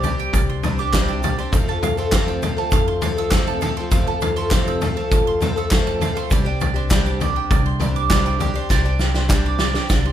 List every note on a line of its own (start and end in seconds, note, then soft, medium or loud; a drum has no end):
0.00 0.19 C2 loud
0.00 0.49 D6 medium
0.00 floor tom medium
0.00 shaker medium
0.04 0.63 G3 medium
0.04 0.65 C4 medium
0.04 0.65 D4 medium
0.04 0.65 G4 medium
0.04 0.34 D5 medium
0.19 0.79 G5 medium
0.19 shaker soft
0.33 1.38 C2 loud
0.33 0.63 D5 medium
0.33 kick loud
0.33 floor tom loud
0.33 shaker loud
0.49 0.79 C6 medium
0.63 0.79 G3 medium
0.63 0.79 C4 medium
0.63 0.80 D4 medium
0.63 0.79 G4 medium
0.63 0.93 D5 medium
0.63 floor tom loud
0.63 shaker medium
0.78 0.94 D4 medium
0.78 0.94 G4 medium
0.78 1.38 D6 medium
0.78 shaker soft
0.83 0.94 C4 soft
0.93 1.23 C3 medium
0.93 1.21 G3 loud
0.93 1.22 C4 medium
0.93 1.23 D4 loud
0.93 1.24 G4 loud
0.93 1.23 D5 medium
0.93 kick loud
0.93 snare loud
0.93 clap loud
0.93 floor tom loud
0.93 shaker loud
1.08 1.53 G5 medium
1.08 shaker soft
1.22 1.38 G3 medium
1.22 1.38 C4 medium
1.22 1.39 D4 medium
1.22 1.37 G4 medium
1.22 1.53 D5 medium
1.22 floor tom medium
1.22 shaker medium
1.38 1.53 C4 medium
1.38 1.54 D4 medium
1.38 1.53 G4 medium
1.38 1.53 C6 medium
1.38 shaker soft
1.52 1.67 F2 medium
1.52 2.58 F2 medium
1.52 1.68 C3 medium
1.52 1.68 F3 medium
1.52 1.68 A3 medium
1.52 1.68 C4 medium
1.52 1.67 A4 medium
1.52 1.82 F5 medium
1.52 kick loud
1.52 floor tom medium
1.52 shaker loud
1.68 1.99 F3 medium
1.68 1.99 A3 medium
1.68 1.97 C4 medium
1.68 1.96 A4 medium
1.68 2.28 A5 medium
1.83 2.12 F5 medium
1.83 floor tom loud
1.83 shaker medium
1.97 2.14 F3 medium
1.97 2.14 A3 medium
1.97 2.13 C4 medium
1.97 2.13 A4 medium
1.97 2.58 C6 medium
1.97 shaker soft
2.12 2.43 F2 medium
2.12 2.43 C3 loud
2.12 2.42 F3 medium
2.12 2.43 A3 medium
2.12 2.44 C4 loud
2.12 2.42 F5 medium
2.12 kick loud
2.12 snare loud
2.12 clap loud
2.12 floor tom medium
2.12 shaker loud
2.16 2.44 A4 loud
2.28 2.87 E6 medium
2.28 shaker soft
2.43 2.58 F3 medium
2.43 2.58 A3 medium
2.43 2.57 C4 medium
2.43 2.55 A4 medium
2.43 2.72 F5 medium
2.43 floor tom medium
2.43 shaker medium
2.57 3.00 F3 medium
2.57 3.01 A3 medium
2.57 3.02 C4 medium
2.57 3.02 A4 medium
2.57 2.87 A5 medium
2.71 3.77 F2 loud
2.71 3.02 F5 medium
2.71 kick loud
2.71 floor tom loud
2.71 shaker loud
2.88 3.47 C6 medium
3.01 3.17 F3 medium
3.01 3.17 A3 medium
3.01 3.16 C4 medium
3.01 3.15 A4 medium
3.01 3.31 F5 medium
3.01 floor tom loud
3.01 shaker medium
3.17 3.32 F3 soft
3.17 3.32 A3 soft
3.17 3.32 C4 soft
3.17 3.32 A4 medium
3.17 3.77 E6 medium
3.17 shaker soft
3.31 3.62 F2 loud
3.31 3.62 C3 medium
3.31 3.60 F3 medium
3.31 3.61 A3 medium
3.31 3.62 C4 loud
3.31 3.62 A4 loud
3.31 3.61 F5 medium
3.31 kick loud
3.31 snare loud
3.31 clap loud
3.31 floor tom loud
3.31 shaker loud
3.47 4.06 A5 medium
3.47 shaker soft
3.61 3.76 F3 medium
3.61 3.77 A3 medium
3.61 3.77 C4 medium
3.61 3.76 A4 medium
3.61 3.91 F5 medium
3.61 floor tom medium
3.61 shaker medium
3.77 3.91 F3 medium
3.77 3.92 A3 medium
3.77 3.92 C4 medium
3.77 3.92 A4 medium
3.77 4.35 C6 medium
3.91 4.06 F2 medium
3.91 4.96 F2 loud
3.91 4.07 C3 medium
3.91 4.07 F3 medium
3.91 4.07 A3 medium
3.91 4.07 C4 medium
3.91 4.06 A4 medium
3.91 4.21 F5 loud
3.91 kick loud
3.91 floor tom medium
3.91 shaker loud
4.07 4.38 F3 medium
4.07 4.37 A3 medium
4.07 4.37 C4 medium
4.07 4.35 A4 medium
4.07 4.36 A5 medium
4.21 4.51 F5 medium
4.21 floor tom loud
4.21 shaker medium
4.36 4.51 F3 medium
4.36 4.51 A3 medium
4.36 4.52 C4 medium
4.36 4.51 A4 medium
4.36 4.96 C6 medium
4.36 shaker soft
4.51 4.81 F2 medium
4.51 4.81 C3 medium
4.51 4.80 F3 medium
4.51 4.81 A3 loud
4.51 4.82 C4 loud
4.51 4.82 A4 medium
4.51 4.81 F5 medium
4.51 kick loud
4.51 snare loud
4.51 clap loud
4.51 floor tom medium
4.51 shaker loud
4.67 5.27 E6 medium
4.67 shaker soft
4.81 4.96 F3 medium
4.81 4.97 A3 medium
4.81 4.96 C4 medium
4.81 4.95 A4 medium
4.81 5.11 F5 medium
4.81 floor tom loud
4.81 shaker medium
4.96 5.39 F3 soft
4.96 5.40 A3 medium
4.96 5.41 C4 medium
4.96 5.41 A4 medium
4.96 5.27 A5 medium
5.11 6.16 F2 loud
5.11 5.41 F5 medium
5.11 kick loud
5.11 floor tom medium
5.11 shaker loud
5.27 5.86 C6 medium
5.41 5.56 F3 medium
5.41 5.56 A3 medium
5.41 5.56 C4 medium
5.41 5.55 A4 medium
5.41 5.71 F5 medium
5.41 floor tom loud
5.41 shaker medium
5.56 5.70 F3 soft
5.56 5.71 A3 medium
5.56 5.71 C4 medium
5.56 5.71 A4 medium
5.56 6.16 E6 medium
5.56 shaker soft
5.70 6.00 F2 loud
5.70 6.00 C3 medium
5.70 5.99 F3 medium
5.70 6.01 A3 loud
5.70 6.01 C4 loud
5.70 6.01 A4 loud
5.70 6.01 F5 medium
5.70 kick loud
5.70 snare loud
5.70 clap loud
5.70 floor tom medium
5.70 shaker loud
5.87 6.31 A5 medium
5.87 shaker soft
6.01 6.16 F3 medium
6.01 6.16 A3 medium
6.01 6.16 C4 medium
6.01 6.14 A4 medium
6.01 6.31 F5 medium
6.01 floor tom medium
6.01 shaker medium
6.15 6.31 F3 medium
6.15 6.31 A3 medium
6.15 6.31 C4 medium
6.15 6.30 A4 medium
6.15 6.31 C6 medium
6.15 shaker soft
6.30 7.36 C2 loud
6.30 6.45 C3 medium
6.30 6.46 G3 loud
6.30 6.46 C4 medium
6.30 6.45 D4 loud
6.30 6.43 G4 medium
6.30 6.60 D5 loud
6.30 kick loud
6.30 floor tom medium
6.30 shaker loud
6.45 6.76 C4 medium
6.45 6.74 D4 medium
6.45 6.73 G4 medium
6.45 7.06 G5 medium
6.61 6.90 D5 medium
6.61 floor tom medium
6.61 shaker medium
6.74 6.89 C4 medium
6.74 6.89 D4 medium
6.74 6.90 G4 medium
6.74 7.06 C6 medium
6.74 shaker soft
6.89 7.20 C3 medium
6.89 7.19 G3 medium
6.89 7.19 C4 loud
6.89 7.20 D4 loud
6.89 7.21 G4 loud
6.89 7.20 D5 medium
6.89 kick loud
6.89 snare loud
6.89 clap loud
6.89 floor tom medium
6.89 shaker loud
7.06 7.65 D6 medium
7.06 shaker soft
7.20 7.78 G3 medium
7.20 7.79 C4 medium
7.20 7.80 D4 medium
7.20 7.81 G4 medium
7.20 7.50 D5 medium
7.20 floor tom medium
7.20 shaker medium
7.36 7.96 G5 medium
7.51 8.56 C2 loud
7.51 7.80 D5 medium
7.51 kick loud
7.51 floor tom loud
7.51 shaker medium
7.66 7.96 C6 medium
7.80 8.09 G3 medium
7.80 8.10 C4 medium
7.80 8.10 D4 medium
7.80 8.10 G4 medium
7.80 8.09 D5 medium
7.80 floor tom medium
7.80 shaker medium
7.96 8.55 D6 medium
7.96 shaker soft
8.10 8.40 C3 loud
8.10 8.38 G3 loud
8.10 8.39 C4 medium
8.10 8.40 D4 medium
8.10 8.41 G4 loud
8.10 8.39 D5 medium
8.10 kick loud
8.10 snare loud
8.10 clap loud
8.10 floor tom medium
8.10 shaker loud
8.25 8.85 G5 medium
8.25 shaker soft
8.39 8.55 G3 medium
8.39 8.55 C4 medium
8.39 8.54 D4 medium
8.39 8.53 G4 medium
8.39 8.69 D5 medium
8.39 floor tom loud
8.39 shaker medium
8.54 8.69 C4 medium
8.54 8.69 D4 medium
8.54 8.69 G4 medium
8.54 9.14 C6 medium
8.54 shaker soft
8.69 9.76 C2 loud
8.69 8.84 C3 medium
8.69 8.85 G3 medium
8.69 8.85 C4 medium
8.69 8.84 D4 medium
8.69 8.82 G4 loud
8.69 8.99 D5 loud
8.69 kick loud
8.69 snare medium
8.69 shaker loud
8.83 9.16 C4 medium
8.83 9.15 D4 medium
8.83 9.13 G4 medium
8.83 9.45 G5 medium
8.83 shaker soft
8.99 9.30 D5 medium
8.99 snare medium
8.99 shaker medium
9.14 9.28 C4 medium
9.14 9.28 D4 medium
9.14 9.29 G4 medium
9.14 9.46 C6 medium
9.14 snare medium
9.14 shaker soft
9.28 9.59 C3 medium
9.28 9.57 G3 medium
9.28 9.58 C4 medium
9.28 9.59 D4 loud
9.28 9.60 G4 medium
9.28 9.59 D5 medium
9.28 kick loud
9.28 snare medium
9.28 clap loud
9.28 shaker medium
9.46 10.05 D6 medium
9.58 9.74 G3 medium
9.58 9.75 C4 medium
9.58 9.74 D4 medium
9.58 9.73 G4 medium
9.58 9.89 D5 medium
9.58 snare loud
9.58 shaker medium
9.74 10.12 C4 soft
9.74 10.12 D4 soft
9.74 10.12 G4 medium
9.74 10.12 G5 medium
9.74 snare medium
9.74 shaker soft
9.90 10.12 C2 loud
9.90 10.12 D5 medium
9.90 kick loud
9.90 snare loud
9.90 shaker medium
10.05 10.12 C6 medium